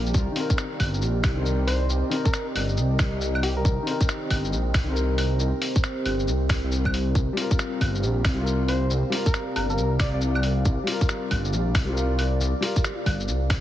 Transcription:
Already playing: detuned saw bass A#1, ambient pad C4 G4 A#4 D5 F5
0.06 shaker
0.14 detuned saw bass C2, ambient pad C4 G4 A#4 D5 D#5, kick, shaker
0.32 upright piano D#3, open hi-hat
0.36 upright piano C4 A#4
0.50 kick, shaker
0.58 finger snap, shaker
0.80 detuned saw bass G1, kick, open hi-hat, claves
0.94 shaker
1.02 detuned saw bass A#1, shaker
1.24 detuned saw bass C2, finger snap, kick, open hi-hat, claves, shaker
1.34 upright piano D#3 C4
1.42 upright piano A#4, shaker
1.67 soft synth lead C5, open hi-hat, claves
1.89 detuned saw bass C2, shaker
2.10 upright piano D#3 C4, open hi-hat
2.14 upright piano A#4
2.25 soft synth lead A#4, kick, shaker
2.34 finger snap, shaker
2.55 detuned saw bass G1, open hi-hat, claves
2.69 shaker
2.77 detuned saw bass C2, shaker
2.99 finger snap, kick, open hi-hat, shaker
3.13 detuned saw bass C2
3.21 shaker
3.35 claves
3.43 soft synth lead G4, open hi-hat
3.57 soft synth lead A#4
3.64 detuned saw bass C2, ambient pad C5, kick, shaker
3.83 upright piano D#3 C4
3.87 upright piano A#4, open hi-hat
4.01 kick, shaker
4.09 finger snap, shaker
4.30 detuned saw bass G1, kick, open hi-hat, claves
4.45 shaker
4.52 detuned saw bass A#1, shaker
4.74 detuned saw bass C2, finger snap, kick, open hi-hat, claves, shaker
4.84 upright piano D#3
4.89 upright piano C4 A#4
4.96 shaker
5.18 open hi-hat, claves
5.40 detuned saw bass C2, shaker
5.62 open hi-hat
5.76 kick, shaker
5.84 finger snap, shaker
6.06 detuned saw bass G1, open hi-hat, claves
6.19 shaker
6.27 detuned saw bass C2, shaker
6.49 finger snap, kick, open hi-hat, shaker
6.63 detuned saw bass C2
6.72 shaker
6.85 kick, claves
6.94 open hi-hat
7.15 detuned saw bass C2, ambient pad D5 F5, kick, shaker
7.33 upright piano G3 F4
7.37 upright piano A#4, open hi-hat
7.51 kick, shaker
7.59 finger snap, shaker
7.81 detuned saw bass G1, kick, open hi-hat, claves
7.95 shaker
8.03 detuned saw bass A#1, shaker
8.25 detuned saw bass C2, finger snap, kick, open hi-hat, claves, shaker
8.34 upright piano G3
8.39 upright piano F4 A#4
8.47 shaker
8.68 soft synth lead C5, open hi-hat, claves
8.90 detuned saw bass C2, shaker
9.10 upright piano G3 F4, open hi-hat
9.14 upright piano A#4
9.26 soft synth lead A#4, kick, shaker
9.34 finger snap, shaker
9.56 detuned saw bass G1, soft synth lead A#4, open hi-hat, claves
9.70 soft synth lead A#4, shaker
9.78 detuned saw bass C2, shaker
10.00 soft synth lead D5, finger snap, kick, open hi-hat, shaker
10.14 detuned saw bass C2, soft synth lead D5
10.21 shaker
10.35 claves
10.43 open hi-hat
10.65 detuned saw bass C2, kick, shaker
10.84 upright piano G3 F4, open hi-hat
10.92 upright piano A#4
11.01 kick, shaker
11.09 finger snap, shaker
11.31 detuned saw bass G1, kick, open hi-hat, claves
11.45 shaker
11.53 detuned saw bass A#1, shaker
11.75 detuned saw bass C2, finger snap, kick, open hi-hat, claves, shaker
11.85 upright piano G3 F4
11.93 upright piano A#4
11.97 shaker
12.19 open hi-hat, claves
12.41 detuned saw bass C2, shaker
12.61 upright piano G3 F4 A#4, open hi-hat
12.76 kick, shaker
12.84 finger snap, shaker
13.06 detuned saw bass G1, kick, open hi-hat, claves
13.20 shaker
13.28 detuned saw bass C2, shaker
13.50 finger snap, kick, open hi-hat, shaker

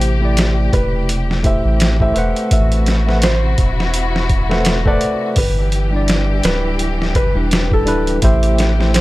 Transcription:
Already playing: sub bass A1, string section C3 G4, tine electric piano A3 E4 G4 C5, felt piano C5
0.01 closed hi-hat
0.20 tine electric piano A3 E4 G4
0.25 tine electric piano D5
0.37 snare, closed hi-hat
0.73 sub bass E1, felt piano B4, kick, closed hi-hat
1.09 closed hi-hat
1.31 snare
1.43 tine electric piano A3 E4 G4 C5, felt piano E5, kick, closed hi-hat
1.65 sub bass A1
1.80 snare, closed hi-hat
2.00 tine electric piano A3 E4 G4 C5, felt piano E5, kick
2.14 sub bass E1, tine electric piano A3 A4 B4 C5 E5, closed hi-hat
2.18 tine electric piano F#5
2.36 closed hi-hat
2.51 sub bass A1, string section C3 E4 F#4, felt piano E5, kick, closed hi-hat
2.72 closed hi-hat
2.86 snare, closed hi-hat
3.06 tine electric piano A3 A4 B4 C5 E5 F#5, snare
3.22 felt piano C5, snare, closed hi-hat
3.58 sub bass E1, kick, closed hi-hat
3.80 snare
3.94 closed hi-hat
4.16 snare
4.30 kick, closed hi-hat
4.49 tine electric piano A3 A4 B4 C5 E5 F#5, snare
4.65 snare, closed hi-hat
4.85 tine electric piano A3 A4 B4 C5 E5 F#5, felt piano D5, kick
5.01 closed hi-hat
5.36 sub bass G1, string section E3 G4, felt piano B4, kick, open hi-hat
5.72 closed hi-hat
5.91 tine electric piano G3 D4 E4
5.96 tine electric piano D5
6.08 snare, closed hi-hat
6.44 sub bass D1, felt piano B4, snare, closed hi-hat
6.79 closed hi-hat
7.02 snare
7.15 sub bass G1, felt piano B4, kick, closed hi-hat
7.34 sub bass E1, tine electric piano G3 D4 E4 B4
7.51 snare, closed hi-hat
7.71 felt piano A4, kick
7.86 sub bass D1, tine electric piano G3 D4 E4 B4, closed hi-hat
8.07 closed hi-hat
8.22 sub bass A1, string section C3 A3 G4, tine electric piano A3 E4 G4 C5, felt piano E5, kick, closed hi-hat
8.43 closed hi-hat
8.58 snare, closed hi-hat
8.79 tine electric piano A3 E4 G4 C5, snare
8.94 felt piano C5, snare, closed hi-hat

